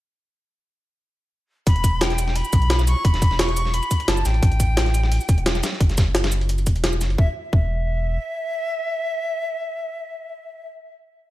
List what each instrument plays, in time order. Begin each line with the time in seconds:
1.67 sub bass E1, flute B5, kick, closed hi-hat
1.76 closed hi-hat
1.84 kick, closed hi-hat, shaker
2.01 flute G5, snare, closed hi-hat
2.10 snare, closed hi-hat
2.18 closed hi-hat, shaker
2.28 snare
2.36 flute B5, closed hi-hat, open hi-hat
2.45 shaker
2.53 sub bass B1, kick, closed hi-hat, shaker
2.62 closed hi-hat
2.70 snare, closed hi-hat
2.79 snare, shaker
2.87 flute C#6, closed hi-hat, shaker
3.05 sub bass E1, flute B5, kick, closed hi-hat
3.14 snare, closed hi-hat
3.22 kick, closed hi-hat, shaker
3.31 snare
3.39 flute C#6, snare, closed hi-hat
3.49 closed hi-hat
3.56 closed hi-hat, shaker
3.66 snare
3.74 flute B5, closed hi-hat
3.83 closed hi-hat, shaker
3.91 kick, closed hi-hat, shaker
4.00 closed hi-hat
4.08 sub bass F#1, flute A5, snare, closed hi-hat
4.17 shaker
4.25 sub bass A1, flute G5, snare, closed hi-hat, shaker
4.34 closed hi-hat
4.43 sub bass A1, kick, closed hi-hat
4.52 closed hi-hat
4.60 kick, closed hi-hat, shaker
4.77 snare, closed hi-hat
4.86 snare, closed hi-hat
4.94 closed hi-hat, shaker
5.03 snare
5.12 closed hi-hat, open hi-hat
5.21 shaker
5.29 sub bass E1, kick, closed hi-hat, shaker
5.38 closed hi-hat
5.46 snare, closed hi-hat
5.55 snare, shaker
5.63 snare, closed hi-hat, shaker
5.73 snare
5.81 sub bass F#1, kick, closed hi-hat
5.89 snare, closed hi-hat
5.98 kick, snare, closed hi-hat, shaker
6.15 snare, closed hi-hat
6.24 snare, closed hi-hat
6.32 closed hi-hat, shaker
6.41 closed hi-hat
6.49 closed hi-hat
6.58 closed hi-hat, shaker
6.67 sub bass E1, kick, closed hi-hat, shaker
6.76 closed hi-hat
6.84 snare, closed hi-hat
6.93 shaker
7.01 sub bass F#1, snare, closed hi-hat, shaker
7.10 closed hi-hat
7.18 sub bass E1, flute E5, kick
7.53 sub bass E1, flute E5, kick